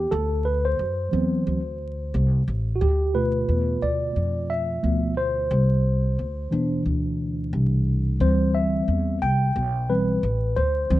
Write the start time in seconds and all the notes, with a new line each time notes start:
Already playing: G4
0.11 D2 A4
0.45 B4
0.65 C5
0.79 F#2
1.12 E2 E3 F#3 C4
1.47 D2
2.14 C2
2.48 A1
2.76 F#4
2.81 D2 G4
3.14 B2 A3 F4 B4
3.49 E2
3.82 D2 D5
4.16 F2
4.50 E5
4.83 D2 F3 A3 B3
5.17 C5
5.51 C2
6.19 D2
6.51 E2 B2 E3 D4
6.86 D2
7.53 C2
8.20 D2 E3 G3 C4 C5
8.55 E5
8.88 E2
9.22 C2 G5
9.56 B1
9.89 E3 G3 C4 B4
10.23 A1
10.56 D2 C5
10.90 D2 E3 F#3 C4